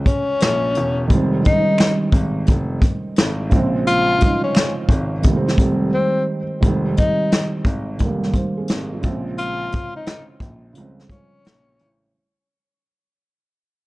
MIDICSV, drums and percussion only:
0, 0, Header, 1, 2, 480
1, 0, Start_track
1, 0, Key_signature, -4, "minor"
1, 0, Tempo, 689655
1, 770, Time_signature, 4, 2, 24, 8
1, 9652, End_track
2, 0, Start_track
2, 0, Title_t, "Drums"
2, 41, Note_on_c, 9, 36, 90
2, 45, Note_on_c, 9, 42, 68
2, 111, Note_off_c, 9, 36, 0
2, 114, Note_off_c, 9, 42, 0
2, 279, Note_on_c, 9, 42, 80
2, 294, Note_on_c, 9, 38, 120
2, 301, Note_on_c, 9, 26, 58
2, 348, Note_off_c, 9, 42, 0
2, 363, Note_off_c, 9, 38, 0
2, 370, Note_off_c, 9, 26, 0
2, 520, Note_on_c, 9, 42, 64
2, 590, Note_off_c, 9, 42, 0
2, 766, Note_on_c, 9, 42, 79
2, 767, Note_on_c, 9, 36, 101
2, 835, Note_off_c, 9, 42, 0
2, 836, Note_off_c, 9, 36, 0
2, 1007, Note_on_c, 9, 42, 68
2, 1017, Note_on_c, 9, 36, 101
2, 1076, Note_off_c, 9, 42, 0
2, 1087, Note_off_c, 9, 36, 0
2, 1240, Note_on_c, 9, 26, 69
2, 1248, Note_on_c, 9, 42, 76
2, 1254, Note_on_c, 9, 38, 112
2, 1310, Note_off_c, 9, 26, 0
2, 1317, Note_off_c, 9, 42, 0
2, 1324, Note_off_c, 9, 38, 0
2, 1479, Note_on_c, 9, 36, 99
2, 1490, Note_on_c, 9, 42, 67
2, 1548, Note_off_c, 9, 36, 0
2, 1559, Note_off_c, 9, 42, 0
2, 1715, Note_on_c, 9, 42, 68
2, 1728, Note_on_c, 9, 36, 90
2, 1785, Note_off_c, 9, 42, 0
2, 1798, Note_off_c, 9, 36, 0
2, 1961, Note_on_c, 9, 36, 80
2, 1964, Note_on_c, 9, 42, 67
2, 2030, Note_off_c, 9, 36, 0
2, 2034, Note_off_c, 9, 42, 0
2, 2199, Note_on_c, 9, 42, 72
2, 2214, Note_on_c, 9, 38, 107
2, 2218, Note_on_c, 9, 26, 59
2, 2269, Note_off_c, 9, 42, 0
2, 2284, Note_off_c, 9, 38, 0
2, 2287, Note_off_c, 9, 26, 0
2, 2441, Note_on_c, 9, 42, 61
2, 2450, Note_on_c, 9, 36, 102
2, 2511, Note_off_c, 9, 42, 0
2, 2520, Note_off_c, 9, 36, 0
2, 2690, Note_on_c, 9, 42, 79
2, 2760, Note_off_c, 9, 42, 0
2, 2927, Note_on_c, 9, 42, 76
2, 2939, Note_on_c, 9, 36, 92
2, 2996, Note_off_c, 9, 42, 0
2, 3009, Note_off_c, 9, 36, 0
2, 3165, Note_on_c, 9, 26, 65
2, 3170, Note_on_c, 9, 42, 71
2, 3176, Note_on_c, 9, 38, 108
2, 3235, Note_off_c, 9, 26, 0
2, 3239, Note_off_c, 9, 42, 0
2, 3246, Note_off_c, 9, 38, 0
2, 3401, Note_on_c, 9, 36, 92
2, 3414, Note_on_c, 9, 42, 66
2, 3471, Note_off_c, 9, 36, 0
2, 3484, Note_off_c, 9, 42, 0
2, 3639, Note_on_c, 9, 42, 78
2, 3651, Note_on_c, 9, 36, 92
2, 3709, Note_off_c, 9, 42, 0
2, 3720, Note_off_c, 9, 36, 0
2, 3815, Note_on_c, 9, 38, 34
2, 3883, Note_on_c, 9, 36, 90
2, 3884, Note_off_c, 9, 38, 0
2, 3889, Note_on_c, 9, 42, 70
2, 3953, Note_off_c, 9, 36, 0
2, 3959, Note_off_c, 9, 42, 0
2, 4612, Note_on_c, 9, 36, 97
2, 4614, Note_on_c, 9, 42, 78
2, 4682, Note_off_c, 9, 36, 0
2, 4683, Note_off_c, 9, 42, 0
2, 4851, Note_on_c, 9, 42, 74
2, 4861, Note_on_c, 9, 36, 99
2, 4921, Note_off_c, 9, 42, 0
2, 4931, Note_off_c, 9, 36, 0
2, 5091, Note_on_c, 9, 42, 70
2, 5098, Note_on_c, 9, 38, 112
2, 5161, Note_off_c, 9, 42, 0
2, 5168, Note_off_c, 9, 38, 0
2, 5323, Note_on_c, 9, 36, 81
2, 5333, Note_on_c, 9, 42, 59
2, 5392, Note_off_c, 9, 36, 0
2, 5402, Note_off_c, 9, 42, 0
2, 5560, Note_on_c, 9, 42, 70
2, 5571, Note_on_c, 9, 36, 81
2, 5629, Note_off_c, 9, 42, 0
2, 5641, Note_off_c, 9, 36, 0
2, 5730, Note_on_c, 9, 38, 35
2, 5800, Note_off_c, 9, 38, 0
2, 5802, Note_on_c, 9, 36, 80
2, 5804, Note_on_c, 9, 42, 65
2, 5871, Note_off_c, 9, 36, 0
2, 5873, Note_off_c, 9, 42, 0
2, 6039, Note_on_c, 9, 42, 75
2, 6054, Note_on_c, 9, 38, 116
2, 6109, Note_off_c, 9, 42, 0
2, 6123, Note_off_c, 9, 38, 0
2, 6282, Note_on_c, 9, 42, 64
2, 6291, Note_on_c, 9, 36, 91
2, 6351, Note_off_c, 9, 42, 0
2, 6360, Note_off_c, 9, 36, 0
2, 6527, Note_on_c, 9, 42, 74
2, 6597, Note_off_c, 9, 42, 0
2, 6766, Note_on_c, 9, 42, 70
2, 6779, Note_on_c, 9, 36, 93
2, 6836, Note_off_c, 9, 42, 0
2, 6848, Note_off_c, 9, 36, 0
2, 7003, Note_on_c, 9, 42, 66
2, 7010, Note_on_c, 9, 38, 102
2, 7073, Note_off_c, 9, 42, 0
2, 7080, Note_off_c, 9, 38, 0
2, 7240, Note_on_c, 9, 36, 85
2, 7250, Note_on_c, 9, 42, 56
2, 7310, Note_off_c, 9, 36, 0
2, 7319, Note_off_c, 9, 42, 0
2, 7480, Note_on_c, 9, 42, 69
2, 7550, Note_off_c, 9, 42, 0
2, 7652, Note_on_c, 9, 38, 31
2, 7722, Note_off_c, 9, 38, 0
2, 7722, Note_on_c, 9, 36, 79
2, 7728, Note_on_c, 9, 42, 60
2, 7792, Note_off_c, 9, 36, 0
2, 7797, Note_off_c, 9, 42, 0
2, 7966, Note_on_c, 9, 42, 67
2, 7981, Note_on_c, 9, 38, 109
2, 8036, Note_off_c, 9, 42, 0
2, 8050, Note_off_c, 9, 38, 0
2, 8206, Note_on_c, 9, 42, 62
2, 8276, Note_off_c, 9, 42, 0
2, 9652, End_track
0, 0, End_of_file